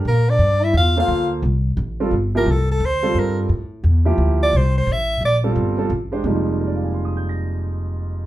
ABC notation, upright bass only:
X:1
M:3/4
L:1/8
Q:"Swing" 1/4=174
K:Gphr
V:1 name="Upright bass" clef=bass
B,,2 G,,2 =E,,2 | D,,2 C,,2 =A,,,2 | G,,,2 C,,2 D,,2 | G,,2 =A,,2 =E,,2 |
D,,2 C,,2 =A,,,2 | B,,,2 G,,,2 =A,,,2 | F,,,6- | F,,,6 |]